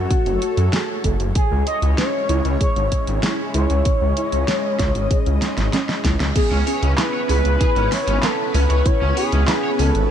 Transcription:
0.00 1.32 A3 medium
0.00 1.05 F#4 medium
0.00 1.32 F#4 medium
0.00 1.33 A4 medium
0.00 1.32 C#5 medium
0.11 0.33 C#4 medium
0.11 kick loud
0.11 closed hi-hat medium
0.26 0.38 F#1 medium
0.26 closed hi-hat soft
0.42 0.72 F#4 medium
0.42 closed hi-hat medium
0.57 0.69 F#2 medium
0.57 closed hi-hat soft
0.73 0.87 G#4 medium
0.73 snare loud
0.73 closed hi-hat medium
1.04 1.16 F#1 medium
1.04 1.18 A4 medium
1.04 kick medium
1.04 closed hi-hat medium
1.20 1.32 F#1 medium
1.20 closed hi-hat soft
1.35 6.32 G#3 medium
1.35 6.32 C#4 medium
1.35 6.32 E4 medium
1.35 1.58 G#4 medium
1.35 1.65 G#4 loud
1.35 3.83 C#5 medium
1.35 kick loud
1.35 closed hi-hat medium
1.51 1.63 C#2 medium
1.67 1.96 D#5 loud
1.67 1.97 C6 medium
1.67 closed hi-hat medium
1.82 1.94 C#2 medium
1.82 closed hi-hat soft
1.98 2.21 C#4 medium
1.98 2.57 C#5 loud
1.98 snare loud
1.98 closed hi-hat medium
2.29 2.41 C#2 medium
2.29 2.52 E4 medium
2.29 closed hi-hat medium
2.45 2.57 C#2 medium
2.45 closed hi-hat soft
2.60 2.74 G#4 medium
2.60 3.19 C#5 loud
2.60 kick loud
2.60 closed hi-hat medium
2.76 2.88 G#1 medium
2.76 closed hi-hat soft
2.92 3.05 C#5 medium
2.92 kick medium
2.92 closed hi-hat medium
3.07 3.19 G#1 medium
3.07 closed hi-hat soft
3.23 3.37 G#4 medium
3.23 snare loud
3.23 closed hi-hat medium
3.54 3.66 C#2 medium
3.54 3.68 E4 medium
3.54 6.00 C#5 loud
3.54 closed hi-hat medium
3.70 3.82 C#2 medium
3.70 closed hi-hat soft
3.85 4.08 C#4 medium
3.85 6.33 D#5 medium
3.85 kick loud
3.85 closed hi-hat medium
4.01 4.13 C#2 medium
4.17 4.47 E4 medium
4.17 closed hi-hat medium
4.32 4.44 C#2 medium
4.32 closed hi-hat medium
4.48 4.62 G#4 medium
4.48 snare loud
4.48 closed hi-hat medium
4.79 4.91 C#2 medium
4.79 4.93 C#5 medium
4.79 kick loud
4.79 snare medium
4.79 closed hi-hat medium
4.95 5.07 G#1 medium
4.95 closed hi-hat medium
5.11 5.33 G#4 medium
5.11 kick loud
5.11 closed hi-hat medium
5.26 5.38 C#2 medium
5.26 closed hi-hat soft
5.42 5.72 C6 medium
5.42 snare medium
5.42 closed hi-hat medium
5.58 5.69 G#1 medium
5.58 snare medium
5.58 closed hi-hat medium
5.73 5.96 C#4 medium
5.73 snare medium
5.73 closed hi-hat medium
5.89 snare medium
6.04 6.16 C#2 medium
6.04 6.27 E4 medium
6.04 kick medium
6.04 snare medium
6.04 closed hi-hat medium
6.20 6.32 C#2 medium
6.20 snare medium
6.20 closed hi-hat medium
6.35 10.11 B3 medium
6.35 6.59 B3 medium
6.35 10.11 C#4 medium
6.35 10.11 E4 medium
6.35 6.65 G#4 loud
6.35 10.11 B4 medium
6.35 kick loud
6.35 closed hi-hat medium
6.35 crash loud
6.51 6.63 C#2 medium
6.51 6.63 C#4 medium
6.67 6.97 C#4 medium
6.67 6.96 G#4 medium
6.67 6.79 C#5 medium
6.67 open hi-hat medium
6.82 6.94 C#2 medium
6.82 6.90 C#4 medium
6.82 closed hi-hat medium
6.98 7.12 E4 medium
6.98 7.27 B4 loud
6.98 snare loud
6.98 clap loud
6.98 closed hi-hat medium
7.14 7.18 C#5 loud
7.29 7.41 C#2 loud
7.29 7.37 C#4 loud
7.29 7.43 G#4 medium
7.29 7.94 B4 loud
7.29 open hi-hat medium
7.45 7.57 C#2 medium
7.45 closed hi-hat medium
7.60 7.83 E4 medium
7.60 7.68 G#4 medium
7.60 kick loud
7.60 closed hi-hat medium
7.76 7.88 G#1 medium
7.76 7.88 C#4 medium
7.76 closed hi-hat soft
7.92 8.25 C#5 loud
7.92 8.22 E5 medium
7.92 snare medium
7.92 open hi-hat medium
8.07 8.19 G#1 medium
8.07 8.15 C#4 medium
8.07 closed hi-hat medium
8.23 8.46 B3 medium
8.23 8.31 C#4 medium
8.23 8.56 A4 loud
8.23 snare loud
8.23 clap loud
8.23 closed hi-hat medium
8.54 8.66 C#2 loud
8.54 8.62 C#4 loud
8.54 8.77 C#4 medium
8.54 8.87 B4 loud
8.54 open hi-hat medium
8.70 8.82 C#2 medium
8.70 8.78 C#5 loud
8.70 closed hi-hat medium
8.86 8.99 E4 medium
8.86 9.17 C#5 loud
8.86 kick loud
8.86 closed hi-hat medium
9.01 9.13 C#2 medium
9.01 9.13 C#4 medium
9.17 9.31 G#4 medium
9.17 9.81 G#4 loud
9.17 9.29 C#5 medium
9.17 open hi-hat medium
9.32 9.44 C#2 medium
9.32 9.40 C#4 medium
9.32 closed hi-hat medium
9.48 9.62 E4 medium
9.48 snare loud
9.48 clap loud
9.48 closed hi-hat medium
9.64 9.68 C#5 medium
9.79 9.91 C#2 medium
9.79 9.87 C#4 loud
9.79 9.93 C#4 medium
9.79 10.10 A4 loud
9.79 open hi-hat medium
9.95 10.07 G#1 medium
9.95 closed hi-hat medium

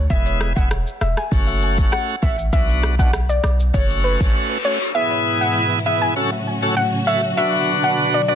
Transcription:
0.10 0.53 E1 loud
0.10 0.53 G#3 medium
0.10 0.53 B3 medium
0.10 0.53 E4 loud
0.10 0.36 E5 loud
0.10 kick loud
0.10 shaker medium
0.26 shaker medium
0.41 cross-stick loud
0.41 shaker medium
0.56 0.84 E1 medium
0.56 0.69 G#3 medium
0.56 0.69 B3 medium
0.56 0.69 E4 medium
0.56 0.69 F#5 medium
0.56 kick medium
0.56 shaker medium
0.71 cross-stick medium
0.71 shaker medium
0.87 shaker soft
1.01 1.16 E1 medium
1.01 1.15 E5 medium
1.01 cross-stick medium
1.01 shaker medium
1.17 1.30 G#5 medium
1.17 cross-stick medium
1.17 shaker medium
1.31 1.88 F#1 loud
1.31 2.15 A3 medium
1.31 2.16 C#4 medium
1.31 2.16 F#4 loud
1.31 kick medium
1.31 shaker medium
1.48 shaker medium
1.62 shaker medium
1.78 kick loud
1.78 shaker medium
1.92 2.06 F#5 medium
1.92 cross-stick medium
1.92 shaker medium
2.09 shaker medium
2.22 2.50 A1 loud
2.22 2.36 A3 medium
2.22 2.36 C#4 medium
2.22 2.37 F#4 medium
2.22 2.36 E5 medium
2.22 kick loud
2.22 shaker soft
2.39 shaker medium
2.52 3.40 B1 loud
2.52 2.95 B3 medium
2.52 2.95 D4 medium
2.52 2.95 F#4 loud
2.52 2.67 E5 medium
2.52 kick loud
2.52 shaker medium
2.69 shaker medium
2.83 cross-stick loud
2.83 shaker medium
2.99 3.11 B3 medium
2.99 3.12 D4 medium
2.99 3.12 F#4 medium
2.99 3.11 F#5 medium
2.99 kick medium
2.99 shaker medium
3.13 cross-stick medium
3.13 shaker medium
3.29 3.42 D5 medium
3.29 shaker soft
3.43 3.71 B1 medium
3.43 3.57 D5 medium
3.43 cross-stick medium
3.43 shaker medium
3.60 shaker medium
3.74 4.16 F#1 loud
3.74 4.58 A3 medium
3.74 4.58 C#4 medium
3.74 4.58 F#4 loud
3.74 3.88 C#5 medium
3.74 kick loud
3.74 reverse cymbal medium
3.74 shaker medium
3.90 shaker medium
4.04 4.18 B4 medium
4.04 shaker medium
4.21 4.33 G#1 medium
4.21 kick loud
4.21 shaker medium
4.64 4.79 A3 medium
4.64 4.79 C#4 medium
4.64 4.79 F#4 medium
4.64 4.79 C#5 medium
4.95 6.15 G#2 medium
4.95 6.15 B2 medium
4.95 6.15 E3 medium
4.95 5.79 B3 loud
4.95 6.15 B3 medium
4.95 5.79 E4 medium
4.95 6.15 E4 medium
4.95 5.79 G#4 loud
4.95 5.21 E5 loud
5.41 5.54 F#5 medium
5.86 6.14 B3 medium
5.86 6.14 E4 medium
5.86 6.14 G#4 medium
5.86 6.00 E5 medium
6.02 6.14 G#5 medium
6.16 7.37 A2 medium
6.16 7.37 C#3 medium
6.16 8.35 F#3 medium
6.16 6.30 C#4 loud
6.16 7.37 C#4 medium
6.16 6.30 F#4 medium
6.16 8.35 F#4 medium
6.16 6.31 A4 loud
6.62 6.75 C#4 medium
6.62 6.75 F#4 medium
6.62 6.75 A4 medium
6.77 6.91 F#5 medium
7.07 7.21 C#4 medium
7.07 7.21 F#4 medium
7.07 7.22 A4 medium
7.07 7.21 E5 medium
7.37 8.35 B2 medium
7.37 8.35 D3 medium
7.37 8.22 D4 loud
7.37 8.35 D4 medium
7.37 8.22 F#4 medium
7.37 8.22 B4 loud
7.37 7.51 E5 loud
7.84 7.96 F#5 medium
8.14 8.26 D5 medium
8.28 8.35 D4 medium
8.28 8.35 F#4 medium
8.28 8.35 B4 medium
8.28 8.35 D5 medium

